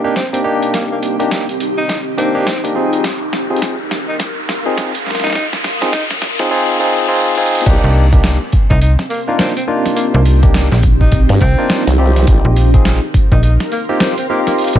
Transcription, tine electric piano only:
0.04 A#3 D4 D#4 G4
0.33 A#3 D4 D#4 G4
0.44 A#3 D4 D#4 G4
1.19 A#3 D4 D#4 G4
2.17 A#3 D4 D#4 G4
2.35 A#3 D4 D#4 G4
2.64 A#3 D4 D#4 G4
2.75 C4 D#4 F4 G#4
3.50 C4 D#4 F4 G#4
4.66 C4 D#4 F4 G#4
5.82 C4 D#4 F4 G#4
6.39 C4 D#4 F4 G#4
6.51 C4 D#4 F4 G#4
6.80 C4 D#4 F4 G#4
7.08 C4 D#4 F4 G#4
7.37 C4 D#4 F4 G#4
7.66 A#3 D4 D#4 G4
8.12 A#3 D4 D#4 G4
9.28 A#3 D4 D#4 F4
9.68 A#3 D4 D#4 F4
10.43 A#3 D4 D#4 G4
11.58 A#3 D4 D#4 F4
11.99 C4 D#4 F4 G4
12.74 C4 D#4 F4 G#4
13.89 C4 D#4 F4 G4
14.30 C4 D#4 F4 G4

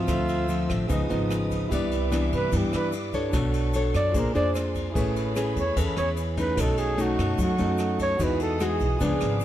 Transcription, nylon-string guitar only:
Already playing: F3 C4
0.08 D3
0.49 F3 C4
0.88 C#3 F3 B3 D#4
1.09 F3 B3 D#4
1.71 C3 E3 B3 D4
2.11 E3 B3 D4
2.52 G2 E3 B3 D4
3.14 D4 A4 C#5
3.34 B3
3.75 D4 A4 C#5
4.15 A#3 D4 G#4 C5
4.35 D4 G#4 C5
4.96 A3 C#4 G#4 B4
5.36 C#4 G#4 B4
5.76 E3 C#4 G#4 B4
6.37 A3 C#4 D#4
6.58 B2
6.98 A3 C#4 D#4
7.38 F#3
7.59 A3 C#4 D#4
8.20 E3 G#3 D#4 F#4
8.61 G#3 D#4 F#4
9.00 C#3 F3 B3 D4

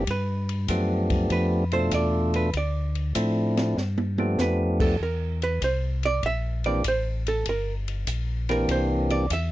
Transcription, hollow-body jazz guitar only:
0.11 B4
1.32 B4
1.73 C5
1.94 D5
2.36 B4
2.57 D5
4.41 B4
4.81 A4
5.03 A#4
5.43 B4
5.64 C5
6.05 D5
6.26 E5
6.66 D5
6.88 C5
7.28 A4
7.49 A#4
8.51 A#4
8.71 C5
9.11 D5
9.33 E5

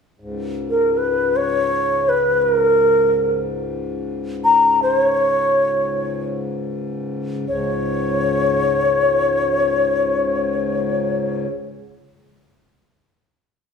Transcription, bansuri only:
0.70 A#4
0.97 B4
1.36 C#5
2.09 B4
2.42 B4
2.54 A#4
4.44 A#5
4.82 C5
4.98 C#5
7.48 C#5

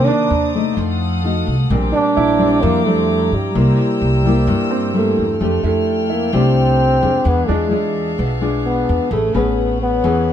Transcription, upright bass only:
0.30 D#2
0.77 F2
1.47 C2
1.70 A#1
2.17 A#1
2.63 F2
3.32 G2
3.55 C2
4.01 C2
4.47 G2
5.18 E2
5.41 F2
5.63 F2
6.33 C2
7.03 F2
7.25 E2
7.49 E2
8.19 B1
8.89 E2
9.11 A1
9.35 A1
10.04 E2

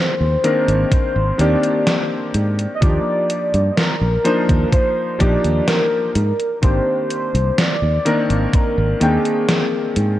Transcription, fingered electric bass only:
0.20 D#2
0.68 G#1
0.92 muted fingered electric bass stroke
1.16 G#1
1.39 D#2
2.35 G#2
2.82 D#2
3.54 G2
4.01 A#1
4.49 D#2
5.20 A#1
5.45 D#2
6.15 G#2
6.63 G#1
7.34 C2
7.82 D#2
8.30 G#1
8.53 muted fingered electric bass stroke
8.78 G#1
9.01 D#2
9.97 G#2

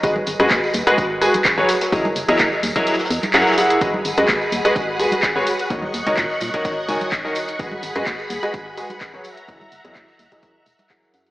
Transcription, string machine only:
3.81 G#4 F#5 B5
5.70 D#5 C#6 F#6
7.59 G#4 F#5 B5
9.25 E5 A#5

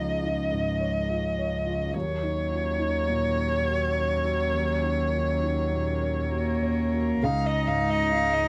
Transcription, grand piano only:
Already playing: C#2 D#4 F4
0.23 D#4
0.52 G#2
0.80 C#5
1.09 F4
1.38 C#5
1.66 F4
1.95 D#2
2.22 D#4
2.52 F4
2.79 D#4
3.08 A#2
3.38 C#5
3.67 F#4
3.96 C#5
4.24 F#4
4.54 D#2
4.83 D#4
5.12 F4
5.42 D#4
5.72 A#2
6.02 C#5
6.32 F#4
6.62 C#5
6.93 F#4
7.23 C#2
7.67 G#2
8.11 D#4

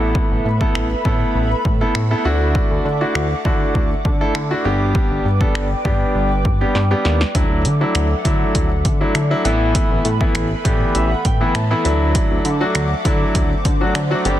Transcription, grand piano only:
Already playing: A3 B3 E4 A4
0.61 A3 B3 E4 A4
1.05 A3 B3 E4 A4
1.81 A3 B3 E4 A4
2.11 A3 B3 E4 A4
2.25 A3 D4 E4 F#4
3.01 A3 D4 E4 F#4
3.45 A3 D4 E4 F#4
4.21 A3 D4 E4 A4
4.51 A3 D4 E4 F#4
4.65 G3 B3 D4 G4
5.41 G3 B3 D4 A4
5.85 G3 B3 D4 G4
6.61 G3 B3 D4 G4
6.91 G3 B3 D4 G4
7.35 F#3 A3 D4 E4
7.81 F#3 A3 D4 E4
8.25 F#3 A3 D4 E4
9.01 F#3 A3 D4 E4
9.31 F#3 A3 D4 E4
9.45 E3 A3 B3 E4
10.21 E3 A3 B3 E4
10.65 E3 A3 B3 G4 D5
10.95 E5
11.11 F#5
11.25 G5
11.41 E3 A3 B3 E4
11.55 A5
11.71 E3 A3 B3 E4 B5
11.85 F#3 A3 D4 E4
12.61 F#3 A3 D4 F#4
13.05 F#3 A3 D4 E4
13.81 F#3 A3 D4 F#4
14.11 F#3 A3 D4 F#4
14.25 G3 B3 D4 G4

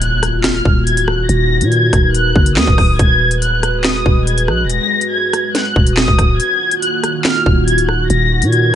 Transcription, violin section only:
0.01 F#6
0.44 F6
0.86 G#6
1.08 F#6
1.29 A#6
1.72 G#6
2.14 F#6
2.57 D#6
3.00 G#6
3.42 F#6
3.84 D#6
4.27 G#6
4.48 F#6
4.70 A#6
5.12 G#6
5.54 F#6
5.98 D#6
6.40 G#6
6.82 F#6
7.25 F6
7.67 G#6
7.89 F#6
8.09 A#6
8.52 G#6

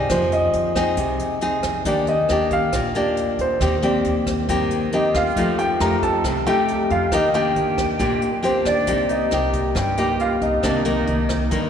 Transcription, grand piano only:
Already playing: D5
0.11 C5
0.33 D#5
1.87 D5
2.09 D#5
2.53 F5
2.97 D5
3.41 C5
3.85 D5
4.94 D#5
5.16 F5
5.59 G5
5.81 A#5
6.03 A5
6.47 G5
6.91 F5
7.13 D#5
7.35 G5
8.45 C5
8.67 D5
9.11 D#5
9.77 G5
10.21 F5
10.42 D#5

